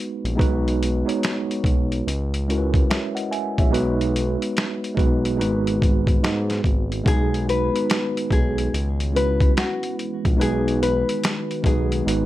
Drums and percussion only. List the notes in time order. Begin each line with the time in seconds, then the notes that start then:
0.25 closed hi-hat
0.39 kick, closed hi-hat
0.68 closed hi-hat
0.83 closed hi-hat
1.09 closed hi-hat
1.23 snare, closed hi-hat
1.51 closed hi-hat
1.64 kick, closed hi-hat
1.92 closed hi-hat
2.08 closed hi-hat
2.34 closed hi-hat
2.50 closed hi-hat
2.74 kick, closed hi-hat
2.91 snare, closed hi-hat
3.17 closed hi-hat
3.33 closed hi-hat
3.58 kick, closed hi-hat
3.74 closed hi-hat
4.01 closed hi-hat
4.16 closed hi-hat
4.42 closed hi-hat
4.57 snare, closed hi-hat
4.84 closed hi-hat
4.97 kick, closed hi-hat
5.25 closed hi-hat
5.41 closed hi-hat
5.67 closed hi-hat
5.82 kick, closed hi-hat
6.07 kick, closed hi-hat
6.24 snare, closed hi-hat
6.50 snare, closed hi-hat
6.64 kick, closed hi-hat
6.92 closed hi-hat
7.06 kick, closed hi-hat
7.34 closed hi-hat
7.49 closed hi-hat
7.76 closed hi-hat
7.90 snare, closed hi-hat
8.17 closed hi-hat
8.31 kick, closed hi-hat
8.58 closed hi-hat
8.74 closed hi-hat
9.00 closed hi-hat
9.16 closed hi-hat
9.40 kick, closed hi-hat
9.57 snare, closed hi-hat
9.83 closed hi-hat
9.99 closed hi-hat
10.25 kick, closed hi-hat
10.41 closed hi-hat
10.68 closed hi-hat
10.83 closed hi-hat
11.09 closed hi-hat
11.24 snare, closed hi-hat
11.51 closed hi-hat
11.64 kick, closed hi-hat
11.92 closed hi-hat
12.08 closed hi-hat